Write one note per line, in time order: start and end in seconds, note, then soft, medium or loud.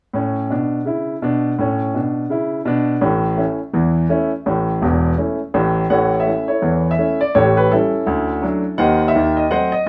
0.13 0.43 A2 medium
0.13 0.44 C#4 medium
0.50 0.79 B2 medium
0.50 0.80 D4 medium
0.85 1.15 C#3 medium
0.85 1.16 E4 medium
1.22 1.51 B2 medium
1.22 1.52 D4 medium
1.58 1.87 A2 medium
1.58 1.89 C#4 medium
1.95 2.24 B2 soft
1.95 2.25 D4 soft
2.30 2.59 C#3 medium
2.30 2.60 E4 medium
2.65 2.95 B2 medium
2.65 2.96 D4 medium
3.01 3.33 A1 medium
3.01 3.33 A2 medium
3.37 3.58 A3 soft
3.37 3.58 C#4 soft
3.37 3.58 E4 soft
3.73 4.05 E2 medium
3.73 4.05 E3 medium
4.09 4.30 A3 medium
4.09 4.30 C#4 medium
4.09 4.30 E4 medium
4.46 4.75 A1 medium
4.46 4.75 A2 medium
4.82 5.11 E1 medium
4.82 5.11 E2 medium
5.18 5.38 A3 soft
5.18 5.38 C#4 soft
5.18 5.38 E4 soft
5.54 5.83 A1 medium
5.54 5.83 A2 medium
5.90 6.21 A1 medium
5.90 6.21 A2 medium
5.90 6.18 A4 medium
5.90 6.18 C#5 medium
5.90 6.19 F#5 medium
6.20 6.49 E5 medium
6.27 6.47 A3 soft
6.27 6.47 C#4 soft
6.27 6.47 E4 soft
6.48 6.89 E4 soft
6.48 6.89 A4 soft
6.48 6.91 C#5 medium
6.62 6.93 E2 medium
6.62 6.93 E3 medium
6.91 7.20 E5 medium
6.98 7.18 A3 soft
6.98 7.19 C#4 medium
6.98 7.19 E4 soft
7.21 7.35 D5 medium
7.35 7.66 A1 medium
7.35 7.65 A2 medium
7.35 7.56 G4 medium
7.35 7.56 A4 medium
7.35 7.57 C#5 medium
7.57 7.71 B4 medium
7.71 7.91 G3 soft
7.71 8.76 C#4 soft
7.71 8.76 E4 medium
7.71 8.79 A4 medium
8.07 8.37 D2 medium
8.07 8.37 D3 medium
8.43 8.62 F#3 medium
8.43 8.63 A3 medium
8.43 8.63 D4 medium
8.78 9.07 D#2 medium
8.78 9.07 D#3 medium
8.78 9.06 C5 medium
8.78 9.06 D#5 medium
8.78 9.07 F#5 medium
9.08 9.37 E5 medium
9.15 9.44 D#2 medium
9.15 9.44 D#3 medium
9.37 9.50 D#5 medium
9.50 9.71 F#3 soft
9.50 9.71 A3 soft
9.50 9.70 C4 soft
9.50 9.72 C5 medium
9.50 9.71 D#5 medium
9.50 9.73 F#5 medium
9.72 9.85 D#5 medium